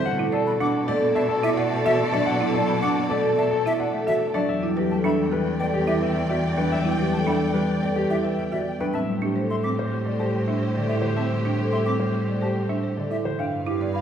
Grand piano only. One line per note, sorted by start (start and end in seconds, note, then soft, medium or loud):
0.05 0.24 F#5 loud
0.33 0.51 A4 loud
0.60 0.79 F#5 loud
0.88 1.07 D5 loud
1.15 1.34 E5 medium
1.29 1.48 A4 loud
1.57 1.76 F#5 medium
1.86 2.04 E5 medium
2.12 2.31 D5 loud
2.26 2.45 F#5 loud
2.54 2.73 A4 loud
2.82 3.01 F#5 loud
3.10 3.29 D5 loud
3.38 3.57 E5 medium
3.51 3.70 A4 loud
3.80 3.98 F#5 medium
4.07 4.26 E5 medium
4.34 4.53 D5 loud
4.49 4.68 E5 medium
4.77 4.96 G4 medium
5.05 5.24 E5 medium
5.33 5.51 B4 medium
5.60 5.79 D5 medium
5.74 5.93 G4 loud
6.02 6.21 E5 medium
6.30 6.48 D5 medium
6.58 6.76 B4 loud
6.72 6.90 E5 medium
6.99 7.18 G4 medium
7.27 7.45 E5 medium
7.54 7.73 B4 medium
7.82 8.01 D5 medium
7.96 8.15 G4 loud
8.24 8.43 E5 medium
8.53 8.71 D5 medium
8.81 8.99 B4 loud
8.95 9.13 E5 medium
9.23 9.40 G4 medium
9.51 9.68 E5 medium
9.79 9.96 C5 medium
10.05 10.24 D5 medium
10.20 10.38 G4 medium
10.47 10.65 E5 medium
10.75 10.93 D5 medium
11.02 11.20 C5 medium
11.16 11.35 E5 medium
11.44 11.62 G4 medium
11.73 11.90 E5 medium
12.00 12.18 C5 medium
12.28 12.46 D5 medium
12.42 12.60 G4 medium
12.69 12.87 E5 medium
12.97 13.15 D5 medium
13.25 13.43 C5 medium
13.40 13.57 F5 medium
13.68 13.85 G4 medium
13.96 14.01 F5 medium